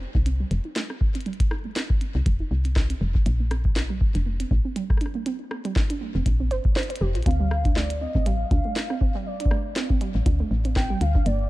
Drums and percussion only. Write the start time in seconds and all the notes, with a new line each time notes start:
0.15 kick
0.26 closed hi-hat
0.51 closed hi-hat
0.76 snare, closed hi-hat
0.90 cross-stick
1.01 kick
1.15 closed hi-hat
1.21 closed hi-hat
1.26 closed hi-hat
1.33 closed hi-hat
1.40 kick, closed hi-hat
1.51 cross-stick
1.76 snare, closed hi-hat
1.90 kick
2.01 closed hi-hat
2.26 kick, closed hi-hat
2.65 closed hi-hat
2.76 kick, cross-stick, snare
2.90 closed hi-hat
3.15 kick
3.26 closed hi-hat
3.51 cross-stick, closed hi-hat
3.65 kick
3.76 snare, closed hi-hat
4.01 kick
4.15 closed hi-hat
4.40 closed hi-hat
4.51 kick
4.76 closed hi-hat
4.90 kick, cross-stick
4.97 cross-stick, closed hi-hat
5.06 cross-stick
5.26 closed hi-hat
5.51 cross-stick
5.65 closed hi-hat
5.76 kick, snare
5.90 closed hi-hat
6.26 kick, closed hi-hat
6.51 closed hi-hat
6.65 kick
6.76 cross-stick, snare, closed hi-hat
6.83 closed hi-hat
6.90 closed hi-hat
6.96 closed hi-hat
7.15 closed hi-hat
7.23 kick, closed hi-hat
7.26 closed hi-hat
7.31 closed hi-hat
7.51 cross-stick
7.65 kick, closed hi-hat
7.76 snare
7.90 closed hi-hat
8.15 kick
8.26 closed hi-hat
8.51 kick, closed hi-hat
8.76 snare, closed hi-hat
8.90 cross-stick
9.01 kick
9.40 closed hi-hat
9.46 kick
9.51 cross-stick
9.76 snare, closed hi-hat
9.90 kick
10.01 closed hi-hat
10.26 kick, closed hi-hat
10.65 closed hi-hat
10.76 kick, cross-stick, snare
11.01 closed hi-hat
11.15 kick
11.26 closed hi-hat